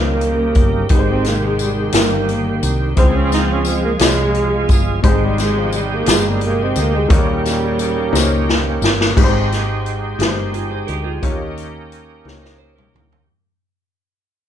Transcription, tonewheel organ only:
Already playing: C#3 D#3 A#3 G4
0.90 D#3 C4 G4
2.98 F3 G#3 F4 G#4
5.04 G#3 C4 D#4 G4
7.11 D#3 A#3 C#4 G4
9.17 G#3 C4 D#4 F#4
9.24 G4
11.24 A#3 C#4 D#4 F4
11.31 G4

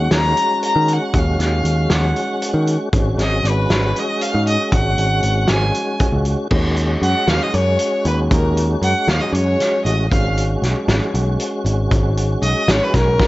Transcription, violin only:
Already playing: F#5
0.15 A#5
0.65 A#5
0.92 F#5
1.17 F5
1.93 F#5
3.21 D#5
3.48 B4
3.98 D#5
4.22 F5
4.48 D#5
4.74 F#5
5.49 G#5
7.04 F#5
7.29 F5
7.43 D#5
7.55 C#5
8.07 B4
8.31 A#4
8.84 F#5
9.10 F5
9.21 D#5
9.33 C#5
9.85 D#5
10.11 F5
12.43 D#5
12.70 C#5
12.83 B4
12.96 A#4

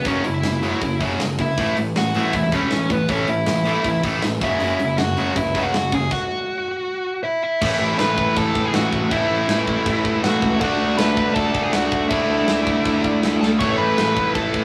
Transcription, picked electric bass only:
0.05 F#1
0.24 F#1
0.43 F#1
0.81 F#1
1.00 F#1
1.20 F#1
1.58 A1
1.77 A1
1.96 A1
2.15 A1
2.34 E1
2.72 A1
2.90 A1
3.09 A1
3.28 A1
3.48 A1
3.85 A1
4.04 A1
4.23 A1
4.42 F#1
4.61 F#1
4.80 F#1
4.99 F#1
5.18 F#1
5.36 C#2
5.74 F#1
5.93 F#1
7.62 A1
7.80 A1
8.00 A1
8.37 A1
8.55 A2
8.74 A1
8.93 A1
9.11 A1
9.30 A1
9.48 A1
9.86 A1
10.05 A2
10.24 A1
10.42 C#2
10.61 D2
10.81 D2
10.99 D2
11.36 D2
11.54 D3
11.75 D2
11.92 D2
12.11 D2
12.30 D2
12.49 D2
12.86 D2
13.05 D3
13.23 D2
13.42 D2
13.61 A1
13.80 A1
13.99 A1
14.36 A1
14.54 A2

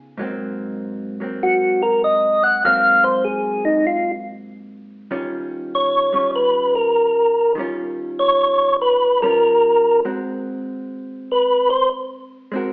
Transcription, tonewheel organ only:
1.43 F#4
1.82 A#4
2.04 D#5
2.44 F#5
2.65 F5
3.04 C5
3.24 G#4
3.65 D#4
3.87 F4
5.75 C#5
6.36 B4
6.75 A#4
8.19 C#5
8.81 B4
9.22 A#4
11.31 B4
11.70 C5

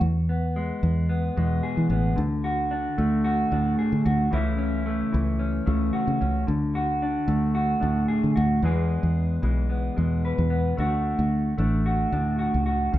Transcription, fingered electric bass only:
0.01 E2
0.83 E2
1.37 E2
1.77 E3
1.90 A1
2.18 D2
2.98 D2
3.52 D2
3.92 D3
4.06 D2
4.33 C#2
5.14 C#2
5.67 C#2
6.07 C#3
6.21 C#2
6.48 D2
7.28 D2
7.83 D2
8.24 D3
8.37 D2
8.62 E2
9.03 E2
9.43 B1
9.98 E2
10.38 E2
10.78 D2
11.19 D2
11.58 A1
12.12 D2
12.54 C#2
12.94 C#2

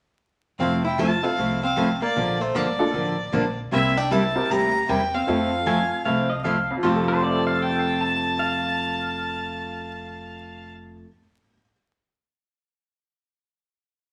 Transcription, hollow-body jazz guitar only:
0.60 C4
0.85 E4
0.99 F4
1.23 C4
1.63 C4
2.02 A#3
2.41 A3
2.56 A#3
3.73 C4
3.97 D4
4.12 E4
4.51 G4
4.91 C4
5.14 C4
6.83 F4

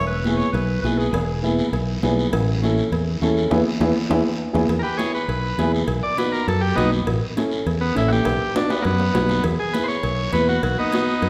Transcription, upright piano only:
0.25 B3 E4 G#4
0.84 B3 E4 G#4
1.42 B3 E4 G#4
2.03 B3 E4 G#4
2.62 C#4 E4 A4
3.21 C#4 E4 A4
3.50 B3 E4 G#4
3.81 B3 E4 G#4
4.09 B3 E4 G#4
4.53 B3 E4 G#4
4.98 B3 E4 G#4
5.59 B3 E4 G#4
6.17 B3 D#4 F#4
6.76 B3 D#4 F#4
7.36 C#4 E4 A4
7.94 C#4 E4 A4
8.55 B3 D#4 F#4
9.13 B3 D#4 F#4
9.74 B3 E4 G#4
10.33 B3 E4 B4
10.93 B3 D#4 F#4

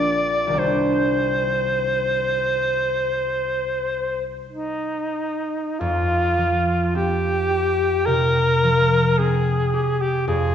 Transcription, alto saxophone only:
Already playing: D5
0.59 C5
4.49 D#4
5.80 F4
6.96 G4
8.06 A#4
9.19 G#4
10.01 G4
10.28 G#4

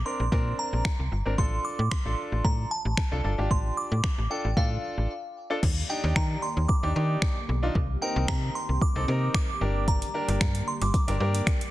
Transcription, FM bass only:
0.20 A#1
0.32 A#2
0.73 A#1
1.00 C2
1.12 G1
1.26 G#1
1.38 A1
1.79 A2
2.05 A1
2.32 A1
2.45 A2
2.85 A1
3.12 C2
3.24 G1
3.39 G#1
3.51 A1
3.92 A2
4.18 A1
4.45 A1
4.57 A2
4.98 A1
5.63 D#2
6.04 D#2
6.16 D#3
6.57 D#2
6.83 D#2
6.96 D#3
7.49 B1
7.75 C2
8.16 C2
8.29 C3
8.69 C2
8.96 C2
9.08 C3
9.61 G1
10.28 G1
10.41 G2
10.81 G1
11.08 G1
11.20 G2

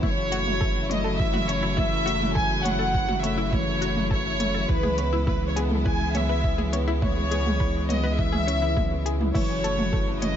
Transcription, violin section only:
0.02 C#5
0.90 D#5
1.19 E5
1.48 C#5
1.77 E5
2.35 G#5
2.64 F#5
3.22 E5
3.51 C#5
4.10 C#5
4.67 B4
5.26 B4
5.48 C#5
5.58 B4
5.66 A4
5.76 B4
5.85 G#5
6.15 E5
7.03 C#5
7.90 D#5
8.18 E5
9.34 C#5
10.23 D#5

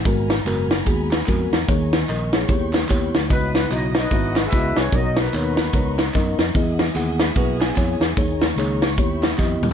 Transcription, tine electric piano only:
0.05 G#2 G#3 B3 F#4 A#4
0.46 G#3 B3 F#4 A#4
0.85 G#3 B3 F#4 G#4
1.27 G#3 B3 F#4 A#4
1.68 D#3 A#3 D#4 G#4 C#5
2.09 A#4 D#5
2.34 G#4 C#5
2.49 D#3 B3 E4 G4 C#5
2.89 B3 E4 G4 C#5
3.30 C#3 B3 E4 F#4 D#5
3.70 B3 E4 F#4 D#5
4.11 B3 E4 F#4 E5
4.53 B3 E4 F#4 D#5
4.93 B2 B3 D#4 A#4 C#5
5.33 B3 D#4 A#4 C#5
5.74 B3 D#4 A#4 C#5
6.14 B3 D#4 A#4 D#5
6.55 E3 B3 E4 G#4 D#5
6.95 B3 E4 G#4 F#5
7.36 B3 E4 G#4 B4
7.76 B3 E4 G#4 C#5
8.16 D#3 A#3 D#4 G#4 C#5
8.58 A#3 D#4 G#4 C#5
8.97 D#3 B3 E4 G4 C#5
9.38 B3 E4 G4 D#5

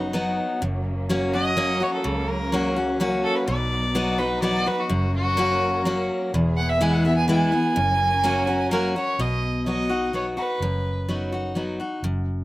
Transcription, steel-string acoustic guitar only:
Already playing: F#2 D#4 F#4
0.13 F#3 B3 D#4 F#4
0.62 F#2
1.09 F#3 A#3 C#4 F#4
1.33 C#4 F#4
1.57 F#3 A#3 C#4 F#4
1.80 C#4 F#4
2.04 C#3
2.52 F#3 A#3 C#4 F#4
2.76 C#4 F#4
3.00 F#3 A#3 C#4 F#4
3.48 B2
3.95 F#3 B3 D#4 F#4
4.18 D#4 F#4
4.42 F#3 B3 D#4 F#4
4.66 D#4 F#4
4.89 F#2
5.37 F#3 A#3 C#4 F#4
5.85 F#3 A#3 C#4 F#4
6.34 E2
6.81 E3 G#3 B3 E4
7.05 B3 E4
7.28 E3 G#3 B3 E4
7.52 B3 E4
7.76 F#2
8.24 F#3 A#3 C#4 F#4
8.47 C#4 F#4
8.71 F#3 A#3 C#4 F#4
8.96 C#4 F#4
9.20 B2
9.66 F#3 B3 D#4 F#4
9.89 D#4 F#4
10.13 F#3 B3 D#4 F#4
10.37 D#4 F#4
10.62 F#2
11.09 F#3 B3 D#4 F#4
11.32 D#4 F#4
11.55 F#3 B3 D#4 F#4
11.80 D#4 F#4
12.04 F#2

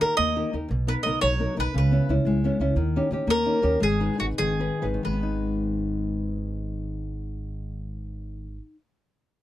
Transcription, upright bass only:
0.01 D#2
0.19 D#2
0.54 D#2
0.71 B1
1.06 B1
1.23 B1
1.59 B1
1.75 C#2
2.09 C#2
2.25 C#2
2.60 C#2
2.76 D#2
3.11 D#2
3.27 D#2
3.64 D#2
3.82 G#1
4.21 G#1
4.39 G#1
4.83 G#1
5.06 G#1

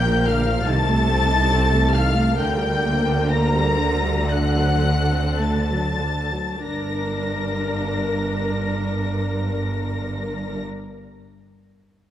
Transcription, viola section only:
Already playing: A#4
0.06 F3
0.26 D3
0.45 F3
0.66 D#3 A4
0.86 A3
1.07 C4
1.28 D#4
1.50 C4
1.71 A3
1.93 D#3
2.15 A3
2.37 D3 A#4
2.59 G3
2.82 A#3
3.06 D4
3.28 A#3
3.53 G3
3.77 D3
4.02 G3
4.27 D3 A4
4.54 F#3
4.81 A3
5.10 C4
5.39 A3
5.69 F#3
6.00 D3
6.33 F#3
6.64 D4 A#4

